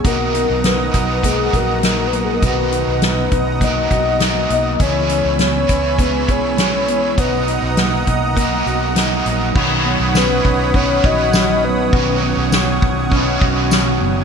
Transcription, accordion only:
\new Staff \with { instrumentName = "Accordion" } { \time 4/4 \key b \major \tempo 4 = 101 << { <dis'' fis'' dis'''>1~ | <dis'' fis'' dis'''>1 | <cis'' gis'' e'''>1 | <dis'' fis'' dis'''>1 |
<cis'' fis'' dis'''>1~ | <cis'' fis'' dis'''>1 | } \\ { ais''1~ | ais''1 | b''1 | ais''1 |
b''1 | cis'''1 | } >> }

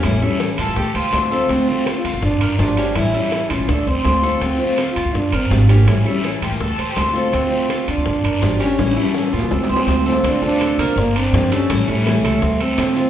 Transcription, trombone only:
\new Staff \with { instrumentName = "Trombone" } { \time 4/4 \key d \minor \tempo 4 = 165 a8 cis'4 r2 r8 | \tuplet 3/2 { c'4 c'8~ c'8 f'4 } d'4 d'4 | e'4. cis'8 d'8 c'4 r8 | \tuplet 3/2 { c'4 c'8~ c'8 f'4 } d'8 c'4 bes8 |
a8 cis'4 r2 r8 | c'4. d'2 cis'8~ | cis'4. bes8 c'8 c'4. | d'8 d'4. bes8 c'4 cis'8~ |
cis'8 a2 c'4. | }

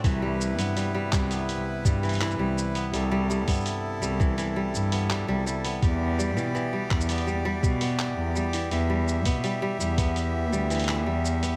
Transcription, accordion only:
<<
  \new Staff \with { instrumentName = "Accordion" } { \time 4/4 \key c \lydian \tempo 4 = 83 b'1 | a'1 | d''1 | e''1 | }
  \new Staff \with { instrumentName = "Accordion" } { \time 4/4 \key c \lydian <c e'>1~ | <c e'>1 | <e b g'>1~ | <e b g'>1 | }
>>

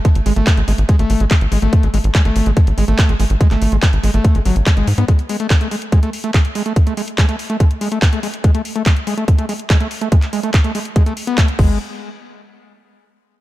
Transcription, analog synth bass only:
\new Staff \with { instrumentName = "Analog synth bass" } { \clef bass \time 4/4 \key gis \phrygian \tempo 4 = 143 r16 gis,,16 gis,,16 gis,,16 r16 gis,,16 gis,,16 gis,,16 r16 gis,,16 gis,,16 gis,,16 r16 gis,,16 gis,,16 gis,,16 | r16 gis,,16 gis,,16 gis,,16 r16 gis,,16 gis,,16 gis,,16 r16 gis,,16 gis,,16 gis,,16 r16 gis,,16 gis,,16 gis,,16 | r16 gis,,16 gis,,16 gis,,16 r16 gis,,16 gis,,16 gis,,16 r16 gis,,16 gis,,16 gis,,16 r16 gis,,16 gis,16 gis,16 | r1 |
r1 | r1 | r2. r8 gis,,8 | r1 | }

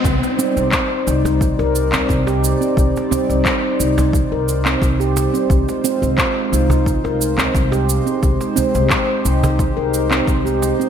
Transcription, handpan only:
\new Staff \with { instrumentName = "Handpan" } { \time 4/4 \key c \minor \tempo 4 = 88 r8 c'8 c''16 r16 ees'16 r8 bes'8 c'8 g'16 r16 c'16 | r8 c'8 c''16 r16 ees'16 r8 bes'8 c'8 g'16 r16 c'16 | r8 c'8 c''16 r16 ees'16 r8 bes'8 c'8 g'16 r16 c'16 | r8 c'8 c''16 r16 ees'16 r8 bes'8 c'8 g'16 r16 c'16 | }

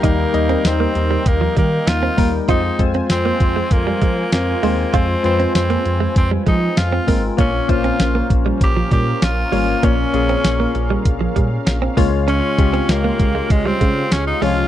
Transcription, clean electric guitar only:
\new Staff \with { instrumentName = "Clean electric guitar" } { \time 4/4 \key f \minor \tempo 4 = 98 ees'16 r8 c'16 r16 bes16 r16 g16 r16 f16 g16 r8 c'16 bes16 r16 | f'16 r8 c'16 r16 bes16 r16 aes16 r16 g16 aes16 r8. aes16 r16 | f'16 r8 c'16 r16 bes16 r16 aes16 r16 g16 aes16 r8 c'16 bes16 r16 | bes16 r8 c'16 r16 bes16 r16 g16 r16 f16 g16 r8. g16 r16 |
bes16 r8 c'16 r16 bes16 r16 g16 r16 f16 g16 r8 c'16 bes16 r16 | des'16 r8 c'16 r16 bes16 r16 aes16 r16 g16 aes16 r8. aes16 r16 | }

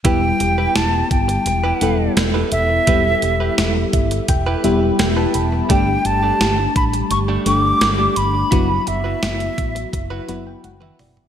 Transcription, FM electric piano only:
\new Staff \with { instrumentName = "FM electric piano" } { \time 4/4 \key e \minor \tempo 4 = 85 << { r1 | r4. e''8 g''16 g''16 e''8 g''16 a''16 b''8 | r1 | r2 r8 b''16 g''16 fis''16 e''16 d''8 | } \\ { <g b e' g'>4. r4 <g b e' a'>4. | <g b e' g'>4. r4 <g b e' g'>4. | <g a d' g'>4. r4 <g a d' g'>4. | <fis b e' fis'>4. r4 <fis b e' fis'>4. | } >> }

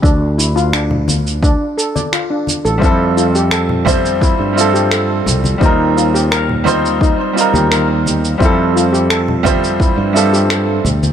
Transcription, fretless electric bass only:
\new Staff \with { instrumentName = "Fretless electric bass" } { \clef bass \time 4/4 \key d \dorian \tempo 4 = 86 d,2~ d,16 r4. a,,16 | f,2~ f,16 g,4~ g,16 c,8 | ees,2~ ees,16 r8 ees,4~ ees,16 | f,2~ f,16 g,4~ g,16 d,8 | }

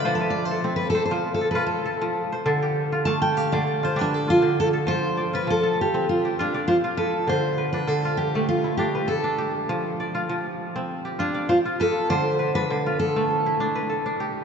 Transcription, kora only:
<<
  \new Staff \with { instrumentName = "Kora" } { \time 4/4 \key f \lydian \tempo 4 = 100 <f' c''>16 b'8 a'8. c''8. a'16 b'8 a'8. c''16 | a'16 g'8 f'8. g'8. f'16 g'8 f'8. a'16~ | a'16 r16 d''16 f'8 a'8. r16 g'8 d''16 c''8 b'8~ | b'16 r16 b'16 d'8 f'8. r16 e'8 b'16 a'8 g'8~ |
g'16 r16 d''16 f'8. r8. g'8 d''16 c''8 b'8~ | b'16 r16 b'16 d'8 f'8. r16 e'8 b'16 a'8 g'8 | }
  \new Staff \with { instrumentName = "Kora" } { \time 4/4 \key f \lydian f8 r8 c'8 r16 f8 r16 f'8 r16 f8 r16 | d8 r8 a8 r16 d8 r16 d'8 r16 d8 r16 | f8 r8 f8 r16 c'8 r16 f'8 r16 f'8 r16 | d8 r8 d8 r16 a8 r16 d'8 r16 d'8 r16 |
f8 r8 f8 r16 c'8 r16 f'8 r16 f'8 r16 | d8 r8 d8 r16 a8 r16 d'8 r16 d'8 r16 | }
>>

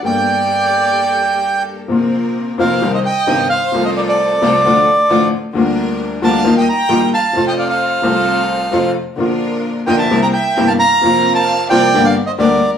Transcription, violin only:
\new Staff \with { instrumentName = "Violin" } { \time 4/4 \key g \minor \tempo 4 = 131 d''2.~ d''8 r8 | \key bes \major r4. c''8. c''16 ees''4 c''8~ | c''16 c''16 bes'16 a'2~ a'8. r8 | r4. f''8. ees''16 g''4 f''8~ |
f''16 ees''16 d''16 c''2~ c''8. r8 | r4. ees''16 e''8 g''16 e''8. f''16 f''8~ | f''8. f''8. d''8. d''8 c''16 bes'8. r16 | }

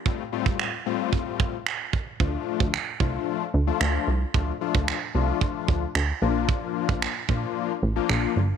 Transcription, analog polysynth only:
\new Staff \with { instrumentName = "Analog polysynth" } { \time 4/4 \key d \minor \tempo 4 = 112 <a, g a c' f'>16 r16 <a, g a c' f'>8. r16 <a, g a c' f'>4~ <a, g a c' f'>16 r4 r16 | <f a d' f'>4 r8 <f a d' f'>8. r8 <f a d' f'>8. r8 | <f a d' f'>16 r16 <f a d' f'>8. r16 <f a d' f'>4~ <f a d' f'>16 r8. <f bes d' f'>8~ | <f bes d' f'>4 r8 <f bes d' f'>8. r8 <f bes d' f'>8. r8 | }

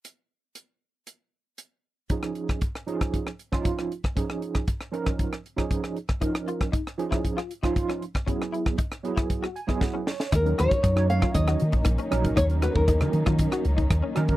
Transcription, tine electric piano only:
\new Staff \with { instrumentName = "Tine electric piano" } { \time 4/4 \key ees \minor \tempo 4 = 117 << { r1 | r1 | r1 | r1 |
r2 r8 aes''8 ges''8 des''8 | r1 | r1 | } \\ { r1 | <f des' ees' aes'>4 r8 <f des' ees' aes'>8. r8 <f des' ees' f'>8. r8 | <f des' ees' aes'>4 r8 <f des' ees' bes'>8. r8 <f des' ees' aes'>8. r8 | <f des' ees' bes'>4 r8 <f des' ees' aes'>8. r8 <f des' ees' f'>8. r8 |
<ges ces' fes' aes'>4 r8 <ges ces' fes' aes'>8. r8 <ges ces' fes' aes'>8. r8 | r16 <ges des' ees' bes'>8 r8 <ges des' ees' des''>4~ <ges des' ees' des''>16 r4 <ges des' ees' bes'>8 | r16 <ges des' ees' bes'>8 r8 <ges des' ees' bes'>4~ <ges des' ees' bes'>16 r4 <ges des' ees' bes'>8 | } >> }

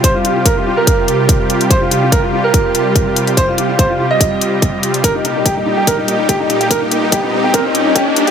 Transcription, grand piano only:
\new Staff \with { instrumentName = "Grand piano" } { \time 4/4 \key ees \mixolydian \tempo 4 = 144 c''16 f'16 f'16 f'16 bes'16 f'16 f'16 bes'2 r16 | c''16 f'16 f'16 f'16 bes'16 f'16 f'16 bes'2 r16 | c''16 f'16 f'16 f'16 c''16 f'16 f'16 ees''2 r16 | bes'16 ees'16 ees'16 ees'16 g'16 ees'16 ees'16 g'16 bes'16 ees'16 ees'16 ees'16 g'16 ees'16 ees'16 g'16 |
bes'16 ees'16 ees'16 ees'16 g'16 ees'16 ees'16 g'16 bes'16 ees'16 ees'16 ees'16 g'16 ees'16 ees'16 g'16 | }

